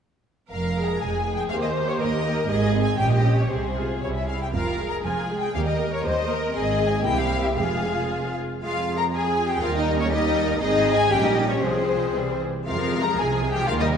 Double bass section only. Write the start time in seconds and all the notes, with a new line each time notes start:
0.51 F1
1.01 F1
1.51 D#2
2.00 D#2
2.49 G#1
2.99 A#1
3.51 C2
4.03 C2
4.54 F1
5.05 F1
5.54 D#2
6.04 D#2
6.55 G#1
7.06 C2
7.57 F1
8.62 F2
9.62 D#2
10.61 G#1
11.11 A#1
11.62 C2
12.14 C2
12.67 F2
13.18 C2
13.68 D#2